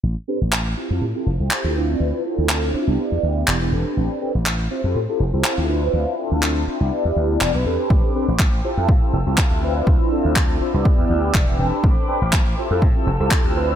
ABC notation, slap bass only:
X:1
M:4/4
L:1/16
Q:"Swing 16ths" 1/4=122
K:Am
V:1 name="Slap bass" clef=bass
A,,, z2 A,,,3 z F,, A,, z F,,, C,, z D,,3 | D,, z2 D,,3 z C,, z E,, D,,2 E,,,2 E,,, z | A,,, z2 A,,,3 z F,, A,, z F,,, C,, z D,,3 | D,, z2 D,,3 z C,, z E,, D,,2 E,,, B,,, E,, z |
A,,, z2 A,,,3 z F,, A,, z F,,, C,, z D,,3 | D,, z2 D,,3 z C,, z E,, D,,2 E,,,2 E,,, z | A,,, z2 A,,,3 z F,, A,, z F,,, C,, z D,,3 |]